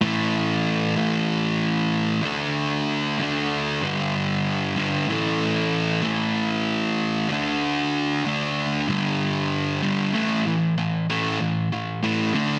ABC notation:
X:1
M:4/4
L:1/8
Q:1/4=95
K:Dlyd
V:1 name="Distorted electric guitar" clef=bass
[A,,E,A,]3 [A,,E,A,]4 [D,A,D]- | [D,A,D]2 [D,A,D]2 [=G,,D,=G,]3 [G,,D,G,] | [A,,E,A,]3 [A,,E,A,]4 [D,A,D]- | [D,A,D]2 [D,A,D]2 [=G,,D,=G,]3 [G,,D,G,] |
[A,,E,A,] [A,,E,] [A,,E,] [A,,E,A,] [A,,E,] [A,,E,] [A,,E,A,] [D,A,D] |]